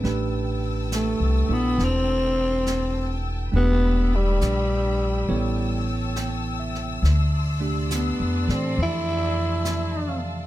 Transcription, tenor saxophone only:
X:1
M:4/4
L:1/8
Q:"Swing" 1/4=69
K:Am
V:1 name="Tenor saxophone"
z2 A, B, C3 z | B, G,4 z3 | z2 B, C E3 z |]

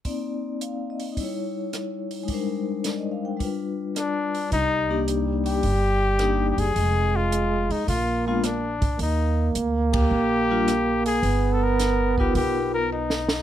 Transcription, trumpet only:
X:1
M:4/4
L:1/16
Q:"Swing" 1/4=107
K:Cm
V:1 name="Trumpet"
z16 | z12 D4 | E4 z2 G6- G3/2 G/2 A2- | A2 F4 E2 F2 F2 D4 |
E4 z2 G8 A2- | A3/2 =A/2 ^A4 G2 G2 A2 ^D4 |]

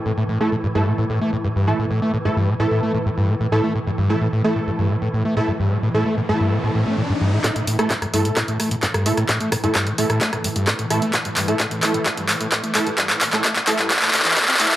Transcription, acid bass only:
X:1
M:4/4
L:1/16
Q:1/4=130
K:C
V:1 name="Acid bass" clef=bass
A,, A,, A,, A, A,, G,, G,, A,, A,, A,, A, A,, G,, G,, A,, A,, | A,, A, A,, G,, G,, A,, A,, A,, A, A,, G,, G,, A,, A,, A,, A, | A,, G,, G,, A,, A,, A,, A, A,, G,, G,, A,, A,, A,, A, A,, G,, | G,, A,, A,, A,, A, A,, G,, G,, A,, A,, A,, A, A,, G,, G,, A,, |
A,, A,, A,, A, A,, G,, G,, A,, A,, A,, A, A,, G,, G,, A,, A,, | A,, A, A,, G,, G,, A,, A,, A,, A, A,, G,, G,, A,, A,, A,, A, | A,, G,, G,, A,, A,, A,, A, A,, G,, G,, A,, A,, A,, A, A,, G,, | G,, A,, A,, A,, A, A,, G,, G,, A,, A,, A,, E, A,, C A,, z |]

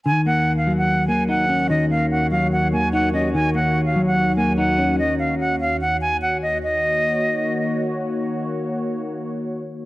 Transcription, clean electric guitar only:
X:1
M:4/4
L:1/8
Q:1/4=146
K:Ebm
V:1 name="Clean electric guitar"
E, B,2 G,2 B, E D | E, B,2 G,2 B, E D | E, B,2 G,2 B, E D- | D4 z4 |
z8 | z8 |]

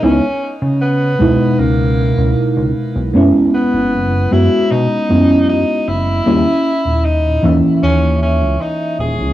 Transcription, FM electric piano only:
X:1
M:4/4
L:1/8
Q:1/4=77
K:C#dor
V:1 name="FM electric piano"
[G,B,DE] z2 [B,,G,DE]4- [B,,G,DE] | [G,B,CE]3 [G,B,CF]2 [G,B,CE] z2 | [=G,A,CE] z2 [E,A,Ce]4- [E,A,Ce] |]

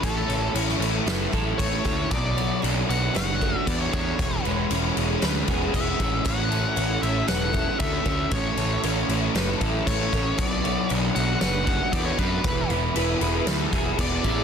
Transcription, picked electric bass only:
X:1
M:4/4
L:1/8
Q:1/4=116
K:A
V:1 name="Picked electric bass" clef=bass
A,,, A,,, A,,, A,,, F,,, A,,, A,,, D,, | B,,,2 B,,, B,,, F,,,2 E,, E,, | E,,, E,,, E,,, E,,, D,, E,,, E,,, A,,, | A,,,2 A,,, A,,, E,,,2 D,, D,, |
A,,, A,,, A,,, A,,, F,,, A,,, A,,, A,,, | B,,,2 B,,, B,,, F,,,2 E,, F,, | E,,, E,,, E,,, E,,, D,, E,,, E,,, A,,, |]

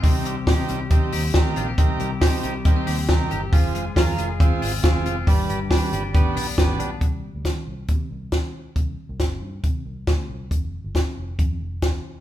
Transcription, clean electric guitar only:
X:1
M:4/4
L:1/16
Q:1/4=138
K:Cm
V:1 name="Clean electric guitar"
C,2 G,2 G2 G,2 C2 G2 C2 F G | C,2 G,2 G2 G,2 B, C G2 C2 G2 | F,2 A,2 F2 A,2 C2 F2 C2 F2 | G,,2 G,2 D2 G,2 =B,2 D2 B,2 D2 |
[K:Fmix] z16 | z16 | z16 |]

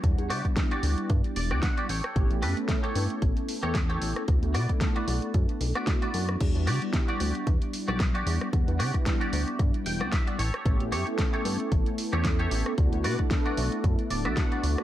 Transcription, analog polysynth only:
X:1
M:4/4
L:1/16
Q:"Swing 16ths" 1/4=113
K:Edor
V:1 name="Analog polysynth"
[G,B,DEf]3 [G,B,DE]8- [G,B,DE]3 z2 | [A,B,CEG]3 [A,B,CEA]12- [A,B,CEA] | [A,B,DEF]3 [A,B,DEA]8 [A,B,DEF]4- [A,B,DEF] | [G,B,DEF]3 [G,B,DE]12- [G,B,DE] |
[G,B,DEf]3 [G,B,DE]8- [G,B,DE]3 z2 | [A,B,CEG]3 [A,B,CEA]12- [A,B,CEA] | [A,B,DEF]3 [A,B,DEA]8 [A,B,DEF]4- [A,B,DEF] |]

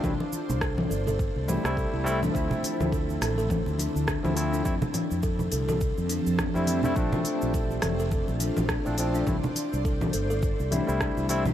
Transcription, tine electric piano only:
X:1
M:4/4
L:1/16
Q:"Swing 16ths" 1/4=104
K:Dm
V:1 name="Tine electric piano"
[G,A,CE] z8 z [G,A,CE] [G,A,CE]3 [G,A,CE] z | [F,A,CE]12- [F,A,CE] [F,A,CE] [F,A,CE]2 | [G,A,CE] z12 [G,A,CE]2 [G,A,CE] | [F,A,CD]12- [F,A,CD] [F,A,CD] [F,A,CD]2 |
[G,A,CE] z8 z [G,A,CE] [G,A,CE]3 [G,A,CE] z |]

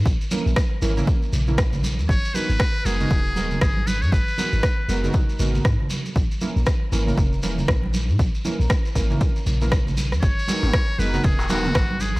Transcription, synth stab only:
X:1
M:4/4
L:1/16
Q:"Swing 16ths" 1/4=118
K:G#m
V:1 name="Synth stab"
z2 [E,A,CEA]2 z2 [E,A,CEA] [E,A,CEA]3 z [E,A,CEA] z4 | z2 [G,B,DFA]2 z2 [G,B,DFA] [G,B,DFA]3 [G,B,DFA]2 z4 | z2 [G,B,DFA]2 z2 [G,B,DFA] [G,B,DFA]3 [G,B,DFA]2 z4 | z2 [E,A,CEA]2 z2 [E,A,CEA] [E,A,CEA]3 [E,A,CEA]2 z4 |
z2 [E,A,CEA]2 z2 [E,A,CEA] [E,A,CEA]3 z [E,A,CEA] z4 | z2 [G,B,DFA]2 z2 [G,B,DFA] [G,B,DFA]3 [G,B,DFA]2 z4 |]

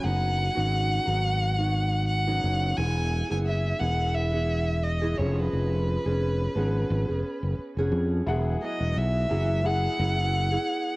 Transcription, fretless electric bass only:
X:1
M:4/4
L:1/16
Q:"Swing 16ths" 1/4=87
K:Elyd
V:1 name="Fretless electric bass" clef=bass
F,,,3 G,,,3 G,,,8 F,,,2 | E,,,3 F,,,3 E,,,8 ^E,,,2 | ^E,,,3 E,,,3 G,,,2 G,,, E,,, z F,,, z E,,, ^E,,2 | E,,,2 z E,,, B,,,2 F,,,4 F,,,4 z2 |]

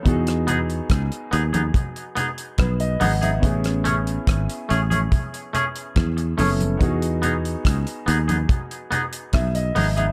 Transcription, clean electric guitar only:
X:1
M:4/4
L:1/16
Q:1/4=71
K:E
V:1 name="Clean electric guitar"
z2 [B,DG] z3 [B,DG] [B,DG] z2 [B,DG] z3 [B,DG] [B,DG] | z2 [A,CG] z3 [A,CG] [A,CG] z2 [A,CG] z3 [A,CG] z | z2 [B,DG] z3 [B,DG] [B,DG] z2 [B,DG] z3 [B,DG] [B,DG] |]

